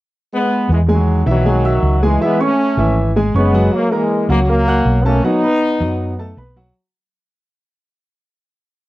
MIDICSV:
0, 0, Header, 1, 4, 480
1, 0, Start_track
1, 0, Key_signature, 4, "major"
1, 0, Tempo, 378310
1, 883, Time_signature, 4, 2, 24, 8
1, 11271, End_track
2, 0, Start_track
2, 0, Title_t, "Grand piano"
2, 0, Program_c, 0, 0
2, 1120, Note_on_c, 0, 56, 68
2, 1123, Note_on_c, 0, 68, 72
2, 1129, Note_on_c, 0, 80, 71
2, 1516, Note_off_c, 0, 56, 0
2, 1517, Note_off_c, 0, 68, 0
2, 1521, Note_off_c, 0, 80, 0
2, 1600, Note_on_c, 0, 52, 77
2, 1604, Note_on_c, 0, 64, 71
2, 1607, Note_on_c, 0, 76, 78
2, 1799, Note_off_c, 0, 52, 0
2, 1801, Note_off_c, 0, 64, 0
2, 1803, Note_off_c, 0, 76, 0
2, 1845, Note_on_c, 0, 56, 61
2, 1847, Note_on_c, 0, 68, 69
2, 1852, Note_on_c, 0, 80, 68
2, 2042, Note_off_c, 0, 56, 0
2, 2043, Note_off_c, 0, 68, 0
2, 2046, Note_off_c, 0, 80, 0
2, 2084, Note_on_c, 0, 66, 74
2, 2092, Note_on_c, 0, 76, 70
2, 2093, Note_on_c, 0, 88, 74
2, 2479, Note_off_c, 0, 66, 0
2, 2484, Note_off_c, 0, 76, 0
2, 2484, Note_off_c, 0, 88, 0
2, 2569, Note_on_c, 0, 56, 68
2, 2570, Note_on_c, 0, 68, 77
2, 2576, Note_on_c, 0, 80, 77
2, 2765, Note_off_c, 0, 56, 0
2, 2765, Note_off_c, 0, 68, 0
2, 2769, Note_off_c, 0, 80, 0
2, 2806, Note_on_c, 0, 52, 72
2, 2812, Note_on_c, 0, 64, 80
2, 2814, Note_on_c, 0, 76, 86
2, 3003, Note_off_c, 0, 52, 0
2, 3007, Note_off_c, 0, 64, 0
2, 3008, Note_off_c, 0, 76, 0
2, 3046, Note_on_c, 0, 61, 76
2, 3050, Note_on_c, 0, 73, 75
2, 3053, Note_on_c, 0, 85, 74
2, 3440, Note_off_c, 0, 61, 0
2, 3443, Note_off_c, 0, 73, 0
2, 3445, Note_off_c, 0, 85, 0
2, 3529, Note_on_c, 0, 52, 85
2, 3532, Note_on_c, 0, 64, 75
2, 3535, Note_on_c, 0, 76, 74
2, 3922, Note_off_c, 0, 52, 0
2, 3924, Note_off_c, 0, 64, 0
2, 3926, Note_off_c, 0, 76, 0
2, 4010, Note_on_c, 0, 56, 78
2, 4013, Note_on_c, 0, 68, 84
2, 4018, Note_on_c, 0, 80, 76
2, 4206, Note_off_c, 0, 56, 0
2, 4208, Note_off_c, 0, 68, 0
2, 4211, Note_off_c, 0, 80, 0
2, 4250, Note_on_c, 0, 61, 72
2, 4255, Note_on_c, 0, 73, 69
2, 4259, Note_on_c, 0, 85, 72
2, 4446, Note_off_c, 0, 61, 0
2, 4449, Note_off_c, 0, 73, 0
2, 4451, Note_off_c, 0, 85, 0
2, 4491, Note_on_c, 0, 54, 85
2, 4492, Note_on_c, 0, 66, 82
2, 4500, Note_on_c, 0, 78, 86
2, 4884, Note_off_c, 0, 54, 0
2, 4885, Note_off_c, 0, 66, 0
2, 4889, Note_off_c, 0, 78, 0
2, 4971, Note_on_c, 0, 58, 78
2, 4971, Note_on_c, 0, 70, 71
2, 4977, Note_on_c, 0, 82, 72
2, 5364, Note_off_c, 0, 58, 0
2, 5364, Note_off_c, 0, 70, 0
2, 5367, Note_off_c, 0, 82, 0
2, 5449, Note_on_c, 0, 54, 84
2, 5452, Note_on_c, 0, 66, 83
2, 5457, Note_on_c, 0, 78, 77
2, 5646, Note_off_c, 0, 54, 0
2, 5648, Note_off_c, 0, 66, 0
2, 5651, Note_off_c, 0, 78, 0
2, 5692, Note_on_c, 0, 58, 71
2, 5693, Note_on_c, 0, 70, 68
2, 5699, Note_on_c, 0, 82, 68
2, 5888, Note_off_c, 0, 58, 0
2, 5888, Note_off_c, 0, 70, 0
2, 5892, Note_off_c, 0, 82, 0
2, 5934, Note_on_c, 0, 66, 73
2, 5935, Note_on_c, 0, 78, 82
2, 5941, Note_on_c, 0, 90, 73
2, 6325, Note_off_c, 0, 66, 0
2, 6326, Note_off_c, 0, 78, 0
2, 6330, Note_off_c, 0, 90, 0
2, 6408, Note_on_c, 0, 57, 76
2, 6415, Note_on_c, 0, 69, 77
2, 6416, Note_on_c, 0, 81, 76
2, 6605, Note_off_c, 0, 57, 0
2, 6609, Note_off_c, 0, 69, 0
2, 6610, Note_off_c, 0, 81, 0
2, 6645, Note_on_c, 0, 54, 84
2, 6653, Note_on_c, 0, 66, 76
2, 6657, Note_on_c, 0, 78, 80
2, 6844, Note_off_c, 0, 54, 0
2, 6848, Note_off_c, 0, 66, 0
2, 6850, Note_off_c, 0, 78, 0
2, 6890, Note_on_c, 0, 59, 71
2, 6899, Note_on_c, 0, 71, 70
2, 6902, Note_on_c, 0, 83, 72
2, 7283, Note_off_c, 0, 59, 0
2, 7288, Note_off_c, 0, 71, 0
2, 7290, Note_off_c, 0, 83, 0
2, 7365, Note_on_c, 0, 54, 71
2, 7369, Note_on_c, 0, 66, 76
2, 7374, Note_on_c, 0, 78, 77
2, 7759, Note_off_c, 0, 54, 0
2, 7762, Note_off_c, 0, 66, 0
2, 7765, Note_off_c, 0, 78, 0
2, 7850, Note_on_c, 0, 57, 77
2, 7856, Note_on_c, 0, 69, 75
2, 7859, Note_on_c, 0, 81, 74
2, 8046, Note_off_c, 0, 57, 0
2, 8049, Note_off_c, 0, 69, 0
2, 8051, Note_off_c, 0, 81, 0
2, 8086, Note_on_c, 0, 59, 70
2, 8092, Note_on_c, 0, 71, 74
2, 8097, Note_on_c, 0, 83, 67
2, 8283, Note_off_c, 0, 59, 0
2, 8286, Note_off_c, 0, 71, 0
2, 8290, Note_off_c, 0, 83, 0
2, 8327, Note_on_c, 0, 54, 88
2, 8333, Note_on_c, 0, 66, 85
2, 8336, Note_on_c, 0, 78, 84
2, 8524, Note_off_c, 0, 54, 0
2, 8527, Note_off_c, 0, 66, 0
2, 8529, Note_off_c, 0, 78, 0
2, 11271, End_track
3, 0, Start_track
3, 0, Title_t, "Trombone section"
3, 0, Program_c, 1, 61
3, 422, Note_on_c, 1, 59, 100
3, 428, Note_on_c, 1, 56, 73
3, 860, Note_off_c, 1, 59, 0
3, 863, Note_off_c, 1, 56, 0
3, 910, Note_on_c, 1, 52, 63
3, 910, Note_on_c, 1, 56, 77
3, 1012, Note_off_c, 1, 52, 0
3, 1012, Note_off_c, 1, 56, 0
3, 1148, Note_on_c, 1, 54, 85
3, 1149, Note_on_c, 1, 51, 68
3, 1584, Note_off_c, 1, 51, 0
3, 1584, Note_off_c, 1, 54, 0
3, 1631, Note_on_c, 1, 51, 76
3, 1632, Note_on_c, 1, 54, 98
3, 2528, Note_off_c, 1, 51, 0
3, 2529, Note_off_c, 1, 54, 0
3, 2589, Note_on_c, 1, 52, 70
3, 2591, Note_on_c, 1, 56, 91
3, 2811, Note_off_c, 1, 56, 0
3, 2818, Note_off_c, 1, 52, 0
3, 2824, Note_on_c, 1, 59, 99
3, 2826, Note_on_c, 1, 56, 83
3, 3056, Note_off_c, 1, 56, 0
3, 3056, Note_off_c, 1, 59, 0
3, 3074, Note_on_c, 1, 61, 97
3, 3077, Note_on_c, 1, 57, 73
3, 3781, Note_off_c, 1, 61, 0
3, 3783, Note_off_c, 1, 57, 0
3, 4262, Note_on_c, 1, 59, 97
3, 4267, Note_on_c, 1, 56, 79
3, 4703, Note_off_c, 1, 59, 0
3, 4705, Note_off_c, 1, 56, 0
3, 4737, Note_on_c, 1, 58, 93
3, 4753, Note_on_c, 1, 54, 65
3, 4973, Note_off_c, 1, 58, 0
3, 4977, Note_on_c, 1, 56, 87
3, 4981, Note_off_c, 1, 54, 0
3, 4995, Note_on_c, 1, 52, 67
3, 5451, Note_on_c, 1, 58, 90
3, 5453, Note_off_c, 1, 56, 0
3, 5462, Note_off_c, 1, 52, 0
3, 5474, Note_on_c, 1, 54, 71
3, 5559, Note_off_c, 1, 58, 0
3, 5577, Note_off_c, 1, 54, 0
3, 5692, Note_on_c, 1, 58, 95
3, 5712, Note_on_c, 1, 54, 71
3, 6360, Note_off_c, 1, 58, 0
3, 6371, Note_off_c, 1, 54, 0
3, 6403, Note_on_c, 1, 61, 82
3, 6424, Note_on_c, 1, 58, 78
3, 6643, Note_on_c, 1, 63, 112
3, 6646, Note_off_c, 1, 61, 0
3, 6656, Note_off_c, 1, 58, 0
3, 6664, Note_on_c, 1, 59, 78
3, 8034, Note_off_c, 1, 63, 0
3, 8044, Note_off_c, 1, 59, 0
3, 11271, End_track
4, 0, Start_track
4, 0, Title_t, "Fingered electric bass"
4, 0, Program_c, 2, 33
4, 876, Note_on_c, 2, 40, 96
4, 1550, Note_off_c, 2, 40, 0
4, 1602, Note_on_c, 2, 35, 98
4, 2274, Note_off_c, 2, 35, 0
4, 2316, Note_on_c, 2, 37, 87
4, 2745, Note_off_c, 2, 37, 0
4, 3517, Note_on_c, 2, 32, 89
4, 4192, Note_off_c, 2, 32, 0
4, 4242, Note_on_c, 2, 30, 97
4, 4669, Note_off_c, 2, 30, 0
4, 5441, Note_on_c, 2, 37, 88
4, 6115, Note_off_c, 2, 37, 0
4, 6159, Note_on_c, 2, 35, 98
4, 6588, Note_off_c, 2, 35, 0
4, 7363, Note_on_c, 2, 42, 101
4, 8034, Note_off_c, 2, 42, 0
4, 8081, Note_on_c, 2, 35, 99
4, 8507, Note_off_c, 2, 35, 0
4, 11271, End_track
0, 0, End_of_file